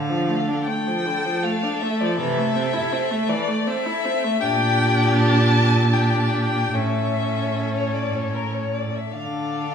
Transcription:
Already playing: D3 A4 F5
0.09 F3
0.28 A3
0.48 D4
0.66 A3 G5
0.87 F3
1.06 D3
1.25 F3
1.43 A3 F5
1.63 D4
1.80 A3 E5
2.00 F3 D5
2.18 C3 E3 E5
2.38 A3
2.55 C4
2.73 E4
2.93 C4
3.11 A3
3.29 E3 D5
3.48 A3
3.67 C4 E5
3.86 E4
4.05 C4
4.24 A3
4.41 A#2 D4 G4 G5
5.16 A5
5.93 D4 G4 G5
6.02 A5
6.10 G5
6.20 A5
6.29 G5
6.34 A5
6.43 G5
6.73 A2 C#4 A4 E5
7.74 C#5
7.94 D5
8.16 C#5
8.35 A#4
8.54 C#5
8.74 D5
8.96 E5
9.11 D3 D4 A4 F5

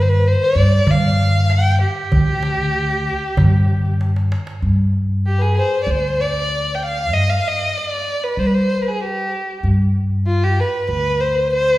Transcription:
Already playing: G2
0.02 C5
0.09 B4, darbuka ka
0.25 C5, darbuka ka
0.40 D5, darbuka ka
0.55 G2
0.86 G2 F5, darbuka dum
1.50 G5, darbuka tek
1.82 G4
2.12 D2, darbuka dum
2.43 darbuka tek
2.59 darbuka ka
2.90 darbuka ka
3.06 darbuka ka
3.37 G2, darbuka dum
3.70 darbuka ka
3.86 darbuka ka
4.01 darbuka tek
4.16 darbuka ka
4.32 darbuka tek
4.47 darbuka ka
4.62 G2
5.26 G4
5.38 G#4 B4
5.58 C5
5.83 D2 D5
5.91 C5
6.20 D5
6.75 G5
6.83 F5
7.12 G2 D#5
7.30 F5
7.47 D#5
7.77 D5
8.24 B4
8.37 G3 C5
8.46 B4
8.54 C5
8.82 B4
8.88 G#4
9.03 G4
9.63 G2
10.26 F4
10.44 G4
10.60 B4
10.89 D2 B4
11.20 C5
11.54 C5

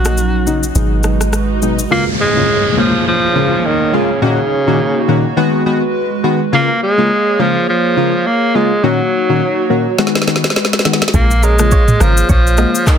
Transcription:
Already playing: A#1 F#3 C#4 D#4 F#4, swell
0.05 C#3 F#3 A#3 D#4, cross-stick, shaker
0.18 shaker
0.46 C#3 F#3 A#3 D#4, shaker
0.63 shaker
0.75 G#1 B2 F#3 G#3 D#4 F#4 B4, shaker
1.03 B2 F#3 G#3 D#4, cross-stick, shaker
1.21 cross-stick, shaker
1.33 cross-stick, shaker
1.62 B2 F#3 G#3 D#4, shaker
1.79 shaker
1.90 C#3 G#3 A#3 F4 G#4 C#5, downlifter
2.21 G#3
2.36 C#3 G#3 A#3 F4
2.77 C#3 F3 G#3 A#3 F4
3.08 F3
3.35 C#3 G#3 A#3 F4
3.66 D#3
3.93 C#3 G#3 A#3 F4
4.21 A#2 C#3 D#3 A#3 C#4 D#4 F#4
4.67 A#2 D#3 A#3 C#4 F#4
5.08 A#2 D#3 A#3 C#4 F#4
5.37 D#3 G#3 B3 F#4 B4
5.66 D#3 G#3 B3 F#4
6.24 D#3 G#3 B3 F#4
6.52 C#3 G#3 A#3 F4 G#4 C#5
6.83 G#3
6.98 C#3 G#3 A#3 F4
7.39 C#3 F3 G#3 A#3 F4
7.69 F3
7.96 C#3 G#3 A#3 F4
8.27 A#3
8.54 C#3 G#3 A#3 F4
8.83 A#2 D#3 F#3 A#3 C#4 D#4 F#4 C#5
9.29 A#2 D#3 A#3 C#4 F#4
9.70 A#2 D#3 A#3 C#4 F#4
9.98 D#3 G#3 B3 F#4 B4, snare
10.07 snare
10.15 snare
10.22 snare
10.27 D#3 G#3 B3 F#4, snare
10.36 snare
10.44 snare
10.50 snare
10.56 snare
10.65 snare
10.73 snare
10.79 snare
10.85 D#3 G#3 B3 F#4, snare
10.93 snare
11.02 snare
11.08 snare
11.13 A#1 C#3 G#3 A#3 C#4 F4 G#4 C#5, kick, shaker
11.31 shaker
11.43 G#3 C#4 A#4, shaker
11.59 C#3 G#3 A#3 F4, cross-stick, shaker
11.71 F4 C#5, kick, shaker
11.88 mid tom, shaker
12.00 G#1 C#3 F3 G#3 A#3 C#4 F4 A#4, cross-stick, shaker
12.17 shaker
12.29 A#1 F3 F4 C#5, kick, shaker
12.47 shaker
12.57 C#3 G#3 A#3 F4 F#4 D#5, cross-stick, shaker
12.75 shaker
12.87 D#3, kick, cross-stick, clap, shaker

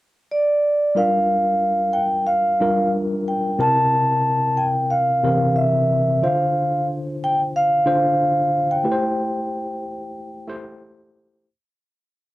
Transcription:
0.31 D5
0.95 G3 D4 F4 A#4 F5
1.93 G5
2.27 F5
2.60 G3 D4 F4 A#4
3.28 G5
3.59 C3 C4 E4 A#4 A5
4.57 G5
4.90 F5
5.23 C3 E3 C4 A#4
5.56 E5
6.22 D3 D4 F4 C5 F5
7.24 G5
7.56 F5
7.86 D3 D4 F4 C5
8.71 G5
8.84 A3 E4 G4 B4
8.92 C5
10.47 A3 E4 G4 C5

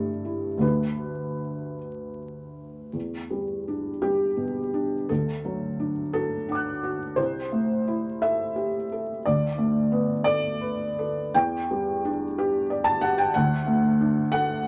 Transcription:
Already playing: C2 G2 A3 E4 A4
0.25 E4
0.58 D2 A3 D4 F#4 B4
2.93 E2
3.31 G3
3.68 D4
4.02 G3 G4
4.37 B2
4.74 D4
5.09 D2 A4
5.45 F#3
5.80 D4
6.13 F#4 A4
6.49 D4 F#5 D6
6.55 F#6
6.83 F#4
7.16 C2 C5
7.52 A3
7.87 E4
8.22 A4 E5
8.56 G4
8.92 A4
9.25 D2 D5
9.58 A3
9.92 B3
10.24 A4 D5
10.61 B4
10.99 A4
11.34 E2 G5
11.71 G3
12.05 D4
12.38 G4
12.70 D5
12.84 A5
13.01 G4 F#5
13.18 G5
13.34 D2 F#5
13.67 A3
14.01 D4
14.32 A4 F#5

